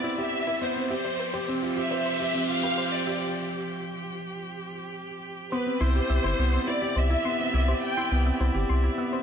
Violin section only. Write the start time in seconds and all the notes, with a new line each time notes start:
Already playing: D5
0.19 E5
0.62 C5
0.90 C5
1.78 E5
2.49 F5
2.93 D5
5.52 B4
5.80 C5
6.67 D5
6.96 E5
7.83 G5